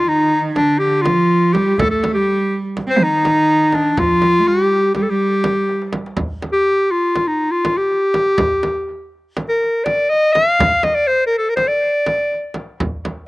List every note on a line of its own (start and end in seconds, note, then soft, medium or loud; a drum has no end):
0.07 0.58 D#3 medium
0.07 0.42 D#4 medium
0.31 darbuka ka soft
0.55 1.06 D3 medium
0.55 0.80 D4 medium
0.55 darbuka tek medium
0.55 frame drum medium
0.79 1.03 G4 medium
1.02 1.56 F3 medium
1.02 1.55 F4 medium
1.02 darbuka tek medium
1.02 frame drum medium
1.42 darbuka ka soft
1.53 1.78 G3 medium
1.53 1.80 G4 medium
1.53 darbuka tek medium
1.53 frame drum medium
1.78 1.89 A3 medium
1.78 1.90 A4 loud
1.78 darbuka dum medium
1.78 frame drum medium
1.91 2.17 A3 medium
1.91 2.13 A4 medium
2.03 darbuka tek medium
2.03 frame drum medium
2.14 2.63 G3 medium
2.14 2.59 G4 medium
2.52 darbuka ka soft
2.77 darbuka tek medium
2.77 frame drum medium
2.87 3.01 C4 medium
2.87 3.05 C5 medium
3.00 3.97 D#3 medium
3.00 3.76 D#4 loud
3.25 darbuka tek medium
3.25 frame drum medium
3.63 darbuka ka soft
3.72 4.00 D4 medium
3.72 darbuka tek medium
3.72 frame drum medium
3.97 4.41 F3 medium
3.97 4.49 F4 loud
3.97 frame drum medium
3.97 darbuka dum loud
4.22 darbuka tek medium
4.22 frame drum medium
4.40 4.48 A3 medium
4.47 4.96 G3 medium
4.47 4.94 G4 medium
4.95 5.09 G3 medium
4.95 5.04 G4 medium
4.95 darbuka tek medium
4.95 frame drum medium
5.02 5.11 A4 medium
5.09 5.89 G3 medium
5.09 5.94 G4 medium
5.44 darbuka tek medium
5.44 frame drum medium
5.69 darbuka tek medium
5.82 darbuka ka medium
5.93 darbuka tek medium
5.93 frame drum medium
6.06 darbuka ka medium
6.17 frame drum medium
6.17 darbuka dum medium
6.42 darbuka tek medium
6.42 frame drum medium
6.52 6.93 G4 medium
6.91 7.29 F4 medium
7.16 darbuka tek medium
7.16 frame drum medium
7.27 7.53 D#4 medium
7.51 7.79 F4 medium
7.65 darbuka tek medium
7.65 frame drum medium
7.78 9.13 G4 medium
8.02 darbuka ka soft
8.14 darbuka tek medium
8.14 frame drum medium
8.38 frame drum medium
8.38 darbuka dum loud
8.63 darbuka tek medium
8.63 frame drum medium
9.37 darbuka tek medium
9.37 frame drum medium
9.49 9.86 A#4 medium
9.85 10.11 D5 medium
9.85 darbuka tek medium
9.85 frame drum medium
10.09 10.35 D#5 medium
10.23 darbuka ka soft
10.33 10.85 F5 loud
10.33 darbuka tek medium
10.33 frame drum medium
10.59 darbuka dum loud
10.59 frame drum loud
10.83 10.96 D#5 medium
10.83 darbuka tek medium
10.83 frame drum medium
10.95 11.09 D5 medium
11.07 11.26 C5 medium
11.26 11.37 A#4 medium
11.38 11.51 A4 medium
11.49 11.55 A#4 medium
11.56 11.69 C5 medium
11.56 darbuka tek medium
11.56 frame drum medium
11.68 12.49 D5 medium
12.06 darbuka tek medium
12.06 frame drum medium
12.44 darbuka ka soft
12.54 darbuka tek medium
12.54 frame drum medium
12.80 darbuka dum medium
12.80 frame drum medium
13.05 darbuka tek medium
13.05 frame drum medium